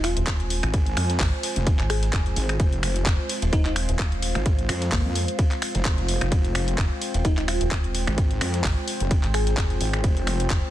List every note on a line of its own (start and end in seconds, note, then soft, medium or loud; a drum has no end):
0.00 0.15 D#1 loud
0.00 10.70 G#3 medium
0.00 10.70 C4 medium
0.00 10.70 F4 medium
0.00 0.22 F4 medium
0.00 6.30 C5 medium
0.00 10.70 C5 medium
0.00 3.28 G#5 medium
0.00 finger snap medium
0.00 open hi-hat loud
0.00 ride medium
0.00 sub drop medium
0.17 0.61 D#1 loud
0.17 closed hi-hat medium
0.27 kick loud
0.27 snare loud
0.27 clap loud
0.27 closed hi-hat medium
0.27 ride medium
0.40 closed hi-hat soft
0.50 open hi-hat medium
0.50 ride medium
0.63 0.95 G#1 loud
0.63 finger snap medium
0.63 closed hi-hat medium
0.74 kick loud
0.74 closed hi-hat medium
0.74 ride medium
0.86 closed hi-hat soft
0.97 1.18 F2 loud
0.97 finger snap medium
0.97 open hi-hat loud
0.97 ride medium
1.10 snare medium
1.10 closed hi-hat medium
1.20 1.31 G#1 loud
1.20 kick loud
1.20 snare loud
1.20 clap loud
1.20 closed hi-hat medium
1.20 open hi-hat medium
1.43 open hi-hat loud
1.43 ride medium
1.56 1.77 F1 medium
1.56 closed hi-hat medium
1.67 kick loud
1.67 closed hi-hat medium
1.67 ride medium
1.79 2.11 G#1 loud
1.79 clap soft
1.79 closed hi-hat soft
1.90 2.56 G#4 medium
1.90 finger snap medium
1.90 open hi-hat loud
1.90 ride medium
2.03 snare medium
2.03 closed hi-hat medium
2.13 2.35 F1 loud
2.13 kick loud
2.13 snare loud
2.13 clap loud
2.13 closed hi-hat medium
2.13 ride medium
2.26 snare soft
2.26 closed hi-hat soft
2.36 2.58 G#1 loud
2.36 open hi-hat loud
2.36 ride medium
2.49 finger snap medium
2.49 closed hi-hat medium
2.60 3.05 F1 loud
2.60 kick loud
2.60 closed hi-hat medium
2.60 ride medium
2.73 closed hi-hat soft
2.83 finger snap medium
2.83 open hi-hat loud
2.83 ride medium
2.96 closed hi-hat medium
3.06 3.17 F1 medium
3.06 kick loud
3.06 snare loud
3.06 clap loud
3.06 closed hi-hat medium
3.06 ride medium
3.26 7.00 F5 medium
3.26 open hi-hat loud
3.26 ride medium
3.42 3.87 D#1 loud
3.42 closed hi-hat medium
3.42 ride soft
3.53 3.61 D#4 medium
3.53 kick loud
3.53 closed hi-hat medium
3.53 ride medium
3.65 3.72 D#4 medium
3.65 clap soft
3.65 closed hi-hat soft
3.76 finger snap medium
3.76 open hi-hat loud
3.76 ride medium
3.89 4.33 D#1 medium
3.89 closed hi-hat medium
3.99 kick loud
3.99 snare loud
3.99 clap loud
3.99 closed hi-hat medium
3.99 ride medium
4.12 closed hi-hat soft
4.22 open hi-hat loud
4.22 ride medium
4.35 4.67 G#1 loud
4.35 finger snap medium
4.35 closed hi-hat medium
4.46 kick loud
4.46 closed hi-hat medium
4.46 ride medium
4.59 closed hi-hat soft
4.69 4.91 F2 medium
4.69 finger snap medium
4.69 open hi-hat loud
4.69 ride medium
4.82 snare medium
4.82 closed hi-hat medium
4.92 5.03 G#1 medium
4.92 5.28 A#3 medium
4.92 kick loud
4.92 snare loud
4.92 clap loud
4.92 closed hi-hat medium
4.92 open hi-hat medium
5.05 5.26 F2 loud
5.16 open hi-hat loud
5.16 ride medium
5.28 closed hi-hat medium
5.39 kick loud
5.39 closed hi-hat medium
5.39 ride medium
5.51 clap soft
5.51 closed hi-hat soft
5.62 finger snap medium
5.62 open hi-hat loud
5.62 ride medium
5.75 6.19 F1 loud
5.75 snare medium
5.75 closed hi-hat soft
5.85 kick loud
5.85 snare loud
5.85 clap loud
5.85 closed hi-hat medium
5.85 ride medium
5.98 snare soft
5.98 closed hi-hat soft
6.09 open hi-hat loud
6.09 ride medium
6.21 6.30 F1 loud
6.21 finger snap medium
6.21 closed hi-hat soft
6.32 6.77 F1 loud
6.32 10.70 G5 medium
6.32 kick loud
6.32 closed hi-hat medium
6.32 ride medium
6.45 closed hi-hat soft
6.55 finger snap medium
6.55 open hi-hat loud
6.55 ride medium
6.68 closed hi-hat medium
6.78 6.89 F1 loud
6.78 kick loud
6.78 snare loud
6.78 clap loud
6.78 closed hi-hat medium
6.78 ride medium
7.02 open hi-hat medium
7.02 ride medium
7.14 7.59 D#1 loud
7.14 closed hi-hat medium
7.14 ride soft
7.25 7.33 D#4 medium
7.25 kick loud
7.25 closed hi-hat medium
7.25 ride medium
7.37 7.44 D#4 medium
7.37 clap soft
7.37 closed hi-hat soft
7.48 7.66 F4 medium
7.48 finger snap medium
7.48 open hi-hat loud
7.48 ride medium
7.61 8.05 D#1 loud
7.61 closed hi-hat medium
7.71 kick loud
7.71 snare loud
7.71 clap loud
7.71 closed hi-hat medium
7.71 ride medium
7.84 closed hi-hat soft
7.95 open hi-hat medium
7.95 ride medium
8.07 8.39 G#1 loud
8.07 finger snap medium
8.07 closed hi-hat soft
8.18 kick loud
8.18 closed hi-hat medium
8.18 ride medium
8.31 closed hi-hat soft
8.41 8.63 F2 loud
8.41 finger snap medium
8.41 open hi-hat loud
8.41 ride medium
8.54 snare medium
8.54 closed hi-hat medium
8.64 8.75 G#1 loud
8.64 kick loud
8.64 snare loud
8.64 clap loud
8.64 closed hi-hat medium
8.64 open hi-hat medium
8.88 open hi-hat medium
8.88 ride medium
9.00 9.22 F1 loud
9.00 closed hi-hat medium
9.11 kick loud
9.11 closed hi-hat medium
9.11 ride medium
9.23 9.56 G#1 medium
9.23 clap soft
9.23 closed hi-hat soft
9.34 10.00 G#4 medium
9.34 finger snap medium
9.34 open hi-hat loud
9.34 ride medium
9.47 snare medium
9.47 closed hi-hat medium
9.57 9.79 F1 loud
9.57 kick loud
9.57 snare loud
9.57 clap loud
9.57 closed hi-hat medium
9.57 ride medium
9.70 snare soft
9.70 closed hi-hat soft
9.81 10.02 G#1 loud
9.81 open hi-hat medium
9.81 ride medium
9.93 finger snap medium
9.93 closed hi-hat medium
10.04 10.49 F1 loud
10.04 kick loud
10.04 closed hi-hat medium
10.04 ride medium
10.17 closed hi-hat soft
10.27 finger snap medium
10.27 open hi-hat loud
10.27 ride medium
10.40 closed hi-hat medium
10.50 10.61 F1 loud
10.50 kick loud
10.50 snare loud
10.50 clap loud
10.50 closed hi-hat medium
10.50 ride medium